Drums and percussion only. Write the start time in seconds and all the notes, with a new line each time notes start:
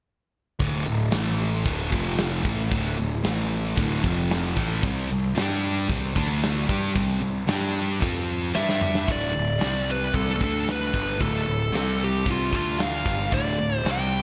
0.60 kick, open hi-hat
0.86 open hi-hat
1.11 snare, open hi-hat
1.38 open hi-hat
1.64 kick, open hi-hat
1.92 kick, open hi-hat
2.18 snare, open hi-hat
2.45 kick, open hi-hat
2.72 kick, open hi-hat
2.98 open hi-hat
3.24 snare, open hi-hat
3.51 open hi-hat
3.77 kick, open hi-hat
4.04 kick, open hi-hat
4.30 snare, open hi-hat
4.56 kick, crash
4.83 kick
5.11 open hi-hat
5.37 snare, open hi-hat
5.63 open hi-hat
5.89 kick, open hi-hat
6.16 kick, open hi-hat
6.43 snare, open hi-hat
6.56 snare
6.69 kick, open hi-hat
6.96 kick, open hi-hat
7.22 open hi-hat
7.48 snare, open hi-hat
7.76 open hi-hat
8.02 kick, open hi-hat
8.28 open hi-hat
8.55 snare
8.69 snare
8.81 mid tom
8.95 snare
9.07 kick, open hi-hat
9.33 open hi-hat
9.60 snare, open hi-hat
9.87 open hi-hat
10.13 kick, open hi-hat
10.28 snare
10.41 kick, open hi-hat
10.68 snare, open hi-hat
10.94 kick, open hi-hat
11.21 kick, open hi-hat
11.49 open hi-hat
11.74 snare, open hi-hat
12.00 open hi-hat
12.26 kick, open hi-hat
12.53 kick, open hi-hat
12.79 snare, open hi-hat
13.05 kick, open hi-hat
13.32 kick, open hi-hat
13.59 open hi-hat
13.85 snare, open hi-hat
14.13 open hi-hat